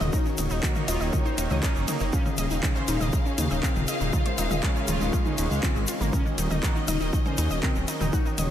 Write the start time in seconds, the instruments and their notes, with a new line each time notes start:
Already playing: synth drone D#3 A#3, string section C#4 F#4, ambient pad D#4 G#4 C#5
0.01 detuned saw bass D#1, analog polysynth D#3, synth arpeggio sound D#5 D#6, mid tom, shaker
0.13 analog polysynth D#4, synth arpeggio sound A#4 A#5, string section C#5, kick, shaker
0.26 analog polysynth D#3, synth arpeggio sound C#4 C#5, shaker
0.38 detuned saw bass D#1, analog polysynth D#3, synth arpeggio sound D#4 D#5, closed hi-hat, mid tom, ride, shaker
0.50 detuned saw bass D#1, synth arpeggio sound D#4 D#5, shaker
0.63 analog polysynth D#3, analog synth pad D#3 A#3 D#4, synth arpeggio sound F#4 F#5, kick, clap, shaker
0.75 analog polysynth D#3, synth arpeggio sound D#4 D#5, mid tom, shaker
0.88 detuned saw bass D#1, analog polysynth F4, synth arpeggio sound D#5 D#6, closed hi-hat, ride, shaker
1.00 detuned saw bass D#1, analog polysynth D#3, synth arpeggio sound D#4 D#5, shaker
1.13 analog polysynth D#3, synth arpeggio sound D#4 D#5, kick, mid tom, shaker
1.25 analog polysynth D#4, synth arpeggio sound C5 C6, shaker
1.38 detuned saw bass D#1, analog polysynth D#3, analog synth pad D#3 A#3 D#4, synth arpeggio sound D#4 D#5, closed hi-hat, ride, shaker
1.50 detuned saw bass C#2, analog polysynth D#3, analog synth pad D#3 A#3 D#4, synth arpeggio sound D#5 D#6, mid tom, shaker
1.63 analog polysynth C#4, synth arpeggio sound A#4 A#5, kick, clap, shaker
1.76 detuned saw bass F#1, analog polysynth D#3, synth arpeggio sound C#4 C#5, shaker
1.88 synth arpeggio sound D#4 D#5, closed hi-hat, mid tom, ride, shaker
2.00 detuned saw bass F#1, analog polysynth D#3, synth arpeggio sound D#4 D#5, shaker
2.13 analog polysynth C#4, ambient pad F4, synth arpeggio sound F4 F5, string section G#4 F5, kick, shaker
2.26 analog polysynth C#3, synth arpeggio sound D#4 D#5, mid tom, shaker
2.31 ambient pad A#4
2.37 detuned saw bass D#1, analog polysynth C#3, synth arpeggio sound D#5 D#6, closed hi-hat, ride, shaker
2.51 detuned saw bass D#1, synth arpeggio sound D#4 D#5, shaker
2.63 analog polysynth C#3, analog synth pad C#3 G#3 C#4, synth arpeggio sound D#4 D#5, kick, clap, mid tom, shaker
2.76 analog polysynth C#3, synth arpeggio sound C5 C6, shaker
2.88 detuned saw bass D#1, analog polysynth D#4, synth arpeggio sound D#4 D#5, closed hi-hat, ride, shaker
3.01 detuned saw bass D#1, analog polysynth C#3, synth arpeggio sound D#5 D#6, mid tom, shaker
3.13 analog polysynth C#3, synth arpeggio sound A#4 A#5, kick, shaker
3.25 synth arpeggio sound C#4 C#5, analog polysynth C#4, ambient pad D#5, shaker
3.38 detuned saw bass D#2, analog polysynth C#3, synth arpeggio sound D#4 D#5, closed hi-hat, mid tom, ride, shaker
3.51 detuned saw bass D#1, analog polysynth C#3, synth arpeggio sound D#4 D#5, shaker
3.63 analog polysynth C4, synth arpeggio sound F4 F5, kick, clap, shaker
3.76 detuned saw bass D#1, analog polysynth C#3, synth arpeggio sound D#4 D#5, mid tom, shaker
3.88 synth arpeggio sound D#5 D#6, closed hi-hat, ride, shaker
4.01 detuned saw bass D#1, analog polysynth C#3, synth arpeggio sound D#4 D#5, shaker
4.13 synth arpeggio sound D#4 D#5, analog polysynth F4, kick, mid tom, shaker
4.25 analog polysynth G#3, synth arpeggio sound C5 C6, closed hi-hat, shaker
4.38 detuned saw bass D#1, analog polysynth G#3, synth arpeggio sound D#4 D#5, closed hi-hat, ride, shaker
4.51 detuned saw bass D#1, synth arpeggio sound D#5 D#6, mid tom, shaker
4.63 analog synth pad C#3 G#3 C#4, analog polysynth G#3, synth arpeggio sound A#4, kick, clap, shaker
4.76 analog polysynth G#3, synth arpeggio sound C#4 C#5, shaker
4.88 detuned saw bass D#1, synth arpeggio sound D#4 D#5, analog polysynth F4, closed hi-hat, mid tom, ride, shaker
5.01 detuned saw bass D#1, analog polysynth G#3, synth arpeggio sound D#4 D#5, shaker
5.13 analog polysynth G#3, synth arpeggio sound F4 F5, kick, shaker
5.26 synth arpeggio sound D#4 D#5, analog polysynth D#4, mid tom, shaker
5.38 detuned saw bass D#1, analog synth pad C#3 G#3 C#4, analog polysynth G#3, synth arpeggio sound D#4 D#5, closed hi-hat, ride, shaker
5.51 detuned saw bass C#2, analog synth pad C#3 G#3 C#4, analog polysynth G#3, synth arpeggio sound F5 F6, shaker
5.63 analog polysynth C4, synth arpeggio sound F4 F5, kick, clap, mid tom, shaker
5.76 detuned saw bass G#1, analog polysynth G#3, synth arpeggio sound D#5 D#6, shaker
5.87 synth arpeggio sound F4 F5, closed hi-hat, ride, shaker
6.01 detuned saw bass G#1, analog polysynth G#3, synth arpeggio sound A#3 A#4, mid tom, shaker
6.13 string section F#3 D#5, analog polysynth C#4, ambient pad D#4, synth arpeggio sound A#4 A#5, kick, mid tom, shaker
6.25 analog polysynth D#3, synth arpeggio sound C#4 C#5, shaker
6.38 detuned saw bass D#1, analog polysynth D#3, synth arpeggio sound D#4 D#5, closed hi-hat, ride, shaker
6.50 detuned saw bass D#1, synth arpeggio sound D#4 D#5, mid tom, shaker
6.63 analog synth pad D#3 A#3 D#4, analog polysynth D#3, synth arpeggio sound F#4 F#5, kick, clap, shaker
6.74 analog polysynth D#3, synth arpeggio sound D#4 D#5, ambient pad G#4, shaker
6.88 detuned saw bass D#1, analog polysynth D#4, synth arpeggio sound D#5 D#6, closed hi-hat, mid tom, ride, shaker
7.00 detuned saw bass D#1, analog polysynth D#3, synth arpeggio sound D#4 D#5, shaker
7.06 ambient pad C#5
7.13 analog polysynth D#3, synth arpeggio sound D#4 D#5, kick, shaker
7.26 analog polysynth C#4, synth arpeggio sound C5 C6, mid tom, shaker
7.38 detuned saw bass D#2, analog polysynth D#3, synth arpeggio sound D#4 D#5, closed hi-hat, ride, shaker
7.50 detuned saw bass D#1, analog polysynth D#3, synth arpeggio sound D#5 D#6, shaker
7.63 analog polysynth C4, synth arpeggio sound A#4 A#5, kick, clap, mid tom, shaker
7.75 detuned saw bass D#1, analog polysynth D#3, synth arpeggio sound C#4 C#5, shaker
7.88 synth arpeggio sound D#4 D#5, closed hi-hat, ride, shaker
8.00 detuned saw bass D#1, analog polysynth D#3, synth arpeggio sound D#4 D#5, mid tom, shaker
8.13 analog polysynth D#4, synth arpeggio sound F#4 F#5, string section C#5, kick, shaker
8.25 analog polysynth D#3, synth arpeggio sound D#4 D#5, shaker
8.38 detuned saw bass D#1, analog polysynth D#3, synth arpeggio sound D#5 D#6, closed hi-hat, mid tom, ride, shaker